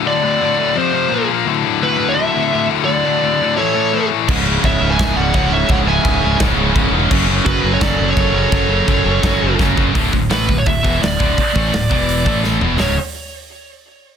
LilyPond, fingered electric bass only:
\new Staff \with { instrumentName = "Fingered electric bass" } { \clef bass \time 4/4 \key d \lydian \tempo 4 = 170 r1 | r1 | r1 | cis,,4 cis,,8 cis,,8 cis,,8 cis,,8 cis,,4 |
cis,,4 cis,,8 cis,,8 cis,,8 cis,,8 cis,,8 e,,8 | fis,,4 fis,,8 fis,,8 fis,,8 fis,,8 fis,,4 | fis,,4 fis,,8 fis,,8 fis,,8 fis,,8 fis,,8 fis,,8 | d,,8 d,,8 a,,8 d,,8 d,,8 e,,8 d,,8 d,,8 |
r8 a,,8 d,,8 e,,4 a,,4 e,,8 | cis,,8 r2. r8 | }